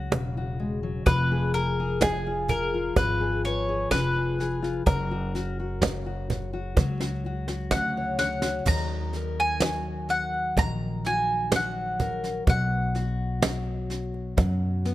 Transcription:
0.00 0.59 F#3 medium
0.00 0.35 F#4 medium
0.00 0.57 G#4 medium
0.11 1.03 E1 medium
0.11 1.01 C#3 medium
0.11 cajon slap medium
0.37 1.02 F#4 soft
0.60 0.83 G#3 medium
0.60 cajon slap soft
0.83 1.07 F#3 medium
1.06 2.93 F1 medium
1.06 2.01 F3 medium
1.06 1.54 B4 medium
1.06 kick medium
1.06 cajon bass medium
1.06 snare soft
1.06 cajon slap soft
1.32 1.56 G#4 medium
1.54 1.79 G#4 medium
1.54 2.03 A#4 medium
1.54 snare soft
1.80 2.51 G#4 soft
2.01 2.96 F3 medium
2.01 2.51 G#4 medium
2.01 kick medium
2.01 cajon bass medium
2.01 snare medium
2.01 cajon slap medium
2.27 2.73 F4 soft
2.48 3.20 G#4 medium
2.48 2.96 A#4 medium
2.48 cajon bass medium
2.48 snare soft
2.74 4.61 F4 medium
2.96 3.88 G#1 medium
2.96 3.91 F3 medium
2.96 3.41 B4 medium
2.96 cajon bass medium
2.96 kick medium
2.96 cajon slap soft
2.96 snare soft
3.21 3.67 G#4 soft
3.44 4.82 B4 medium
3.44 3.91 C#5 medium
3.44 snare soft
3.69 4.15 G#4 medium
3.91 4.83 F1 medium
3.91 4.81 F3 medium
3.91 4.83 B4 medium
3.91 kick medium
3.91 cajon slap medium
3.91 snare medium
4.16 4.39 G#4 medium
4.39 4.82 G#4 medium
4.39 cajon slap soft
4.39 snare soft
4.62 4.81 F4 medium
4.62 snare soft
4.86 6.73 F#1 medium
4.86 6.76 F#3 medium
4.86 5.10 F#4 medium
4.86 7.68 A#4 medium
4.86 kick medium
4.86 cajon bass medium
4.86 cajon slap soft
4.86 snare soft
5.11 5.34 F#4 medium
5.35 5.58 F#4 medium
5.35 snare soft
5.35 cajon slap soft
5.60 6.05 F#4 soft
5.82 6.77 C#3 medium
5.82 kick medium
5.82 cajon bass medium
5.82 snare medium
5.82 cajon slap medium
6.06 6.29 F#4 soft
6.06 cajon slap soft
6.30 6.52 F#4 soft
6.30 cajon bass medium
6.30 snare soft
6.53 7.00 F#4 medium
6.53 cajon slap soft
6.77 7.68 C#2 medium
6.77 9.61 F#3 medium
6.77 kick medium
6.77 cajon bass medium
6.77 cajon slap soft
6.77 snare soft
7.00 7.25 F#4 soft
7.00 snare soft
7.25 7.48 F#4 medium
7.25 cajon slap soft
7.48 8.41 F#4 medium
7.48 snare soft
7.71 8.63 D2 medium
7.71 8.62 C#3 medium
7.71 8.16 F#5 medium
7.71 kick medium
7.71 cajon slap medium
7.71 snare medium
7.97 8.19 C#5 medium
8.19 8.62 C#5 medium
8.19 8.67 F#5 medium
8.19 snare medium
8.19 cajon slap soft
8.42 8.61 F#4 medium
8.42 snare medium
8.65 10.53 D#2 medium
8.65 10.57 D#3 medium
8.65 9.39 A#5 medium
8.65 kick medium
8.65 cajon bass medium
8.65 snare soft
8.65 cajon slap soft
8.65 crash medium
9.13 12.00 A#4 medium
9.13 snare soft
9.40 10.07 G#5 medium
9.60 11.52 F#3 medium
9.60 snare medium
9.60 cajon slap medium
10.09 10.54 F#5 medium
10.09 snare soft
10.09 cajon slap soft
10.34 cajon slap soft
10.57 12.44 A#1 medium
10.57 12.42 D#3 medium
10.57 11.06 A#5 medium
10.57 kick medium
10.57 cajon bass medium
10.57 snare soft
10.57 cajon slap soft
11.05 12.95 F#4 medium
11.05 11.55 G#5 medium
11.05 snare soft
11.52 13.42 F#3 medium
11.52 snare medium
11.52 cajon slap medium
11.56 12.48 F#5 medium
11.99 12.43 A#4 medium
11.99 cajon bass medium
11.99 snare soft
12.24 snare soft
12.47 14.34 B1 medium
12.47 14.95 B2 medium
12.47 14.35 F#5 medium
12.47 kick medium
12.47 cajon bass medium
12.47 snare soft
12.47 cajon slap soft
12.95 14.95 F#4 medium
12.95 snare soft
12.95 cajon slap soft
13.42 14.37 F#3 medium
13.42 cajon slap medium
13.42 snare medium
13.90 snare soft
13.90 cajon slap soft
14.14 cajon slap soft
14.37 14.95 F#2 medium
14.37 14.95 F#3 medium
14.37 kick medium
14.37 cajon bass medium
14.37 cajon slap soft
14.37 snare soft
14.85 14.95 B3 medium
14.85 snare soft

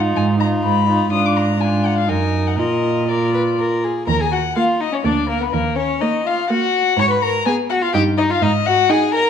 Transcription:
0.00 0.39 D#4 soft
0.00 0.39 F4 soft
0.16 0.58 G#2 medium
0.16 0.24 G#5 medium
0.40 0.87 D#4 soft
0.40 0.88 F4 soft
0.40 0.48 A#5 medium
0.64 1.06 G#2 soft
0.64 1.11 B5 medium
0.88 1.12 D#4 soft
0.88 1.10 F4 soft
1.11 2.10 G#2 soft
1.11 1.57 D4 soft
1.11 1.56 F4 soft
1.11 1.27 D#6 medium
1.26 1.38 D6 medium
1.37 1.62 A#5 medium
1.59 2.08 D4 soft
1.59 2.10 F4 soft
1.59 1.87 G#5 medium
1.86 1.97 F#5 medium
1.98 2.10 F5 medium
2.08 2.59 F#2 soft
2.08 2.60 D#4 soft
2.08 2.58 A#4 soft
2.08 2.48 G#5 medium
2.47 2.57 F#5 soft
2.57 3.87 A#2 soft
2.57 3.08 F4 soft
2.57 3.08 A#4 soft
2.57 3.10 D#5 medium
3.08 3.86 F4 soft
3.08 3.32 A#4 soft
3.08 3.83 D5 soft
3.34 3.42 B4 soft
3.59 3.86 A#4 soft
3.84 4.07 G#4 soft
4.08 4.46 D#2 medium
4.08 4.22 A#4 medium
4.08 4.19 A#5 medium
4.20 4.31 G#4 medium
4.20 4.34 G#5 medium
4.31 4.39 F#4 soft
4.31 4.56 F#5 medium
4.56 4.93 A#3 soft
4.56 4.82 F4 medium
4.56 4.64 F5 medium
4.80 4.91 D#4 medium
4.80 4.95 D#5 medium
4.92 4.97 C#4 medium
4.92 5.06 C#5 medium
5.04 5.43 D2 soft
5.04 5.41 A#3 medium
5.04 5.28 D4 soft
5.04 5.29 D5 medium
5.29 5.40 A#3 medium
5.29 5.43 A#4 medium
5.40 5.45 B3 soft
5.40 5.55 B4 medium
5.52 5.91 D#2 medium
5.52 5.77 A#3 medium
5.52 5.77 A#4 medium
5.76 6.02 C#4 soft
5.76 6.03 C#5 medium
6.01 6.38 A#3 soft
6.01 6.25 D#4 soft
6.01 6.28 D#5 medium
6.25 6.49 F4 medium
6.25 6.49 F5 medium
6.49 6.86 A#3 medium
6.49 6.97 F#4 medium
6.49 7.01 F#5 medium
6.97 7.36 G#2 medium
6.97 7.09 C#5 medium
6.97 7.12 C#6 medium
7.10 7.22 B4 soft
7.10 7.24 B5 medium
7.22 7.47 A#4 medium
7.22 7.45 A#5 medium
7.46 7.82 B3 medium
7.46 7.55 G#4 medium
7.46 7.54 G#5 medium
7.70 7.83 F#4 medium
7.70 7.75 F#5 medium
7.82 7.93 F4 medium
7.82 7.93 F5 medium
7.94 8.32 G2 medium
7.94 8.30 D#4 medium
7.94 8.02 G4 medium
7.94 8.02 G5 medium
8.18 8.32 D#4 medium
8.18 8.23 D#5 medium
8.30 8.42 F4 medium
8.30 8.44 F5 medium
8.42 8.79 G#2 medium
8.42 8.51 D#4 medium
8.42 8.68 D#5 medium
8.66 8.92 F#4 medium
8.66 8.91 F#5 medium
8.89 9.25 D#4 medium
8.89 9.14 G#4 medium
8.89 9.13 G#5 medium
9.14 9.30 A#4 medium
9.14 9.30 A#5 medium

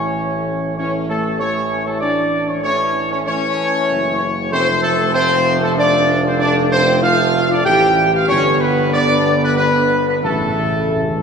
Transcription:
0.00 3.58 A1 medium
0.00 0.74 E3 medium
0.00 0.74 A3 medium
0.00 0.74 C#4 loud
0.00 0.74 C#5 loud
0.77 1.36 E3 medium
0.77 1.36 A3 medium
0.77 1.07 C#4 loud
0.77 0.91 C#5 loud
1.08 1.38 A3 medium
1.08 1.37 A4 loud
1.40 2.61 E3 medium
1.40 2.60 A3 medium
1.40 1.87 C#4 medium
1.40 1.83 C#5 loud
1.85 2.00 A3 medium
1.85 2.00 A4 loud
2.00 2.44 D4 loud
2.00 2.45 D5 loud
2.48 2.62 C#4 medium
2.48 2.61 C#5 medium
2.63 3.22 E3 medium
2.63 3.23 A3 medium
2.63 2.97 C#4 loud
2.63 3.07 C#5 loud
3.11 3.18 C#4 loud
3.11 3.18 C#5 loud
3.25 4.32 E3 medium
3.25 4.32 A3 loud
3.25 4.47 C#4 loud
3.25 4.47 C#5 loud
3.90 4.53 F#1 medium
4.49 7.65 F1 loud
4.49 5.09 F3 medium
4.49 5.09 A3 medium
4.49 4.66 C4 loud
4.49 4.81 C5 loud
4.83 5.12 A3 loud
4.83 5.12 A4 loud
5.13 6.99 F3 loud
5.13 6.99 A3 loud
5.13 5.57 C4 loud
5.13 5.58 C5 loud
5.60 5.77 A3 loud
5.60 5.70 A4 loud
5.77 6.24 D4 loud
5.77 6.21 D5 loud
6.24 6.39 C4 medium
6.24 6.41 C5 loud
6.39 6.69 D4 loud
6.39 6.54 D5 loud
6.72 7.03 C4 loud
6.72 7.01 C5 loud
7.02 7.61 F3 loud
7.02 8.25 A3 loud
7.02 7.49 F4 loud
7.02 7.47 F5 loud
7.50 7.57 D4 loud
7.50 7.67 D5 loud
7.64 8.30 A1 loud
7.64 8.25 E3 medium
7.64 8.09 G4 loud
7.64 8.10 G5 loud
8.14 8.28 F4 medium
8.14 8.30 F5 loud
8.28 10.23 G1 loud
8.28 8.90 D3 loud
8.28 8.90 B3 medium
8.28 8.42 C#4 loud
8.28 8.59 C#5 loud
8.61 8.92 B3 loud
8.61 8.93 B4 loud
8.93 9.54 D3 loud
8.93 9.54 B3 loud
8.93 9.41 D4 loud
8.93 9.38 D5 loud
9.39 9.56 B3 medium
9.44 9.56 B4 loud
9.57 10.20 D3 medium
9.57 10.04 B3 medium
9.57 10.20 B3 medium
9.57 10.03 B4 loud
10.07 10.15 B3 medium
10.07 10.15 B4 loud
10.22 11.22 A1 loud
10.22 10.32 A2 soft
10.22 11.22 C#3 medium
10.22 11.22 A3 loud
10.22 11.22 A3 medium
10.22 11.22 A4 loud
10.33 10.40 A2 soft
10.41 10.48 A2 medium
10.49 10.56 A2 soft
10.58 10.63 A2 medium
10.65 10.71 A2 medium
10.72 10.78 A2 medium
10.80 10.86 A2 medium
10.88 10.94 A2 medium
10.96 11.02 A2 medium
11.03 11.09 A2 medium
11.10 11.17 A2 medium
11.18 11.22 A2 medium

